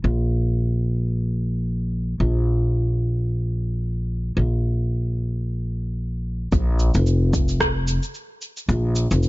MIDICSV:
0, 0, Header, 1, 3, 480
1, 0, Start_track
1, 0, Tempo, 540541
1, 34, Time_signature, 4, 2, 24, 8
1, 8246, End_track
2, 0, Start_track
2, 0, Title_t, "Upright bass"
2, 0, Program_c, 0, 32
2, 36, Note_on_c, 0, 34, 78
2, 1934, Note_off_c, 0, 34, 0
2, 1954, Note_on_c, 0, 34, 83
2, 3852, Note_off_c, 0, 34, 0
2, 3877, Note_on_c, 0, 34, 80
2, 5774, Note_off_c, 0, 34, 0
2, 5795, Note_on_c, 0, 34, 98
2, 6115, Note_off_c, 0, 34, 0
2, 6168, Note_on_c, 0, 29, 102
2, 7075, Note_off_c, 0, 29, 0
2, 7713, Note_on_c, 0, 34, 104
2, 8034, Note_off_c, 0, 34, 0
2, 8089, Note_on_c, 0, 29, 97
2, 8246, Note_off_c, 0, 29, 0
2, 8246, End_track
3, 0, Start_track
3, 0, Title_t, "Drums"
3, 5793, Note_on_c, 9, 36, 123
3, 5793, Note_on_c, 9, 69, 32
3, 5881, Note_off_c, 9, 69, 0
3, 5882, Note_off_c, 9, 36, 0
3, 6033, Note_on_c, 9, 69, 76
3, 6122, Note_off_c, 9, 69, 0
3, 6167, Note_on_c, 9, 69, 46
3, 6255, Note_off_c, 9, 69, 0
3, 6274, Note_on_c, 9, 69, 34
3, 6363, Note_off_c, 9, 69, 0
3, 6513, Note_on_c, 9, 36, 103
3, 6515, Note_on_c, 9, 69, 79
3, 6601, Note_off_c, 9, 36, 0
3, 6603, Note_off_c, 9, 69, 0
3, 6647, Note_on_c, 9, 69, 44
3, 6736, Note_off_c, 9, 69, 0
3, 6751, Note_on_c, 9, 36, 60
3, 6754, Note_on_c, 9, 37, 84
3, 6756, Note_on_c, 9, 69, 33
3, 6840, Note_off_c, 9, 36, 0
3, 6843, Note_off_c, 9, 37, 0
3, 6844, Note_off_c, 9, 69, 0
3, 6994, Note_on_c, 9, 69, 78
3, 7083, Note_off_c, 9, 69, 0
3, 7129, Note_on_c, 9, 69, 44
3, 7217, Note_off_c, 9, 69, 0
3, 7234, Note_on_c, 9, 69, 34
3, 7323, Note_off_c, 9, 69, 0
3, 7475, Note_on_c, 9, 69, 75
3, 7563, Note_off_c, 9, 69, 0
3, 7608, Note_on_c, 9, 69, 43
3, 7697, Note_off_c, 9, 69, 0
3, 7716, Note_on_c, 9, 69, 34
3, 7805, Note_off_c, 9, 69, 0
3, 7955, Note_on_c, 9, 69, 85
3, 8043, Note_off_c, 9, 69, 0
3, 8090, Note_on_c, 9, 69, 43
3, 8179, Note_off_c, 9, 69, 0
3, 8195, Note_on_c, 9, 69, 33
3, 8246, Note_off_c, 9, 69, 0
3, 8246, End_track
0, 0, End_of_file